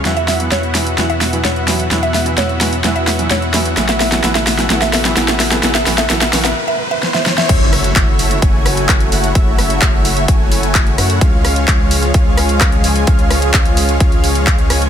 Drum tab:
CC |----------------|----------------|----------------|----------------|
HH |xxoxxxoxxxoxxxox|xxoxxxoxxxoxxxox|xxoxxxoxxxoxxxox|xxoxxxox--------|
CP |----------------|----------------|----------------|----------------|
SD |o-o-o-o-o-o-o-o-|o-o-o-o-o-o-o-o-|oooooooooooooooo|oooooooo----oooo|
BD |----------------|----------------|----------------|----------------|

CC |x---------------|----------------|----------------|----------------|
HH |x-oxx-oxx-oxxxox|x-oxx-oxx-oxxxox|x-oxx-oxx-oxxxox|xxoxxxoxxxoxxxox|
CP |----x-------x---|----x-------x---|----x-------x---|----x-------x---|
SD |--r-------r-r---|--r-----------r-|--r-------r-r---|--r-----------r-|
BD |o---o---o---o---|o---o---o---o---|o---o---o---o---|o---o---o---o---|